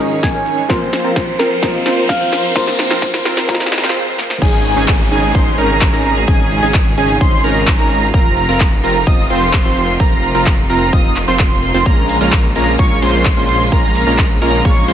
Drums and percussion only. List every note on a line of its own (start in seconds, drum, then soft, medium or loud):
0.12 closed hi-hat soft
0.23 kick loud
0.23 snare medium
0.23 closed hi-hat medium
0.35 closed hi-hat soft
0.46 open hi-hat medium
0.58 closed hi-hat soft
0.70 kick loud
0.70 snare medium
0.70 closed hi-hat medium
0.81 closed hi-hat soft
0.93 snare medium
0.93 open hi-hat loud
1.05 closed hi-hat soft
1.16 kick loud
1.16 snare medium
1.16 closed hi-hat medium
1.28 closed hi-hat soft
1.39 snare medium
1.39 open hi-hat loud
1.51 closed hi-hat soft
1.63 kick loud
1.63 snare medium
1.63 closed hi-hat medium
1.74 closed hi-hat soft
1.86 snare medium
1.86 open hi-hat loud
1.97 closed hi-hat soft
2.09 kick loud
2.09 snare medium
2.09 closed hi-hat medium
2.21 closed hi-hat soft
2.32 snare medium
2.32 open hi-hat medium
2.44 closed hi-hat soft
2.56 kick loud
2.56 snare medium
2.56 closed hi-hat medium
2.67 snare medium
2.67 closed hi-hat soft
2.79 snare loud
2.79 open hi-hat loud
2.91 snare medium
2.91 closed hi-hat soft
3.02 kick loud
3.02 snare loud
3.02 closed hi-hat medium
3.14 snare medium
3.14 closed hi-hat soft
3.25 snare loud
3.25 open hi-hat medium
3.37 snare medium
3.37 closed hi-hat soft
3.49 kick loud
3.49 snare loud
3.49 closed hi-hat medium
3.54 snare medium
3.60 snare medium
3.60 closed hi-hat soft
3.66 snare medium
3.72 snare loud
3.72 open hi-hat loud
3.78 snare medium
3.84 snare medium
3.84 closed hi-hat soft
3.89 snare medium
4.19 snare medium
4.30 snare medium
4.42 kick loud
4.42 closed hi-hat medium
4.42 crash loud
4.53 closed hi-hat soft
4.65 open hi-hat loud
4.77 closed hi-hat soft
4.88 kick loud
4.88 clap loud
4.88 closed hi-hat medium
5.00 closed hi-hat soft
5.12 open hi-hat medium
5.23 closed hi-hat soft
5.35 kick loud
5.35 closed hi-hat medium
5.46 closed hi-hat soft
5.58 open hi-hat loud
5.70 closed hi-hat soft
5.81 kick loud
5.81 clap loud
5.81 closed hi-hat medium
5.93 closed hi-hat soft
6.05 open hi-hat loud
6.16 closed hi-hat soft
6.28 kick loud
6.28 closed hi-hat medium
6.40 closed hi-hat soft
6.51 open hi-hat loud
6.63 closed hi-hat soft
6.74 kick loud
6.74 clap loud
6.74 closed hi-hat medium
6.86 closed hi-hat soft
6.98 open hi-hat loud
7.09 closed hi-hat soft
7.21 kick loud
7.21 closed hi-hat medium
7.33 closed hi-hat soft
7.44 open hi-hat loud
7.56 closed hi-hat soft
7.67 kick loud
7.67 clap loud
7.67 closed hi-hat medium
7.79 closed hi-hat soft
7.91 open hi-hat medium
8.02 closed hi-hat soft
8.14 kick loud
8.14 closed hi-hat medium
8.26 closed hi-hat soft
8.37 open hi-hat loud
8.49 closed hi-hat soft
8.60 kick loud
8.60 clap loud
8.60 closed hi-hat medium
8.72 closed hi-hat soft
8.84 open hi-hat loud
8.95 closed hi-hat soft
9.07 kick loud
9.07 closed hi-hat medium
9.19 closed hi-hat soft
9.30 open hi-hat loud
9.42 closed hi-hat soft
9.53 kick loud
9.53 clap loud
9.53 closed hi-hat medium
9.65 closed hi-hat soft
9.77 open hi-hat loud
9.88 closed hi-hat soft
10.00 kick loud
10.00 closed hi-hat medium
10.12 closed hi-hat soft
10.23 open hi-hat loud
10.35 closed hi-hat soft
10.46 kick loud
10.46 clap loud
10.46 closed hi-hat medium
10.58 closed hi-hat soft
10.70 open hi-hat loud
10.81 closed hi-hat soft
10.93 kick loud
10.93 closed hi-hat medium
11.05 closed hi-hat soft
11.16 clap medium
11.16 open hi-hat loud
11.28 closed hi-hat soft
11.39 kick loud
11.39 clap loud
11.39 closed hi-hat medium
11.51 closed hi-hat soft
11.63 open hi-hat loud
11.74 closed hi-hat soft
11.86 kick loud
11.86 closed hi-hat medium
11.98 closed hi-hat soft
12.09 open hi-hat loud
12.09 ride medium
12.21 closed hi-hat soft
12.32 kick loud
12.32 clap loud
12.32 closed hi-hat medium
12.44 closed hi-hat soft
12.56 open hi-hat medium
12.56 ride medium
12.67 closed hi-hat soft
12.79 kick loud
12.79 closed hi-hat medium
12.91 closed hi-hat soft
13.02 open hi-hat loud
13.02 ride medium
13.14 closed hi-hat soft
13.25 kick loud
13.25 clap loud
13.25 closed hi-hat medium
13.37 closed hi-hat soft
13.49 open hi-hat medium
13.49 ride medium
13.60 closed hi-hat soft
13.72 kick loud
13.72 closed hi-hat medium
13.84 closed hi-hat soft
13.95 open hi-hat loud
13.95 ride medium
14.07 closed hi-hat soft
14.19 kick loud
14.19 clap loud
14.19 closed hi-hat medium
14.30 closed hi-hat soft
14.42 open hi-hat medium
14.42 ride medium
14.53 closed hi-hat soft
14.65 kick loud
14.65 closed hi-hat medium
14.77 closed hi-hat soft
14.88 open hi-hat loud
14.88 ride medium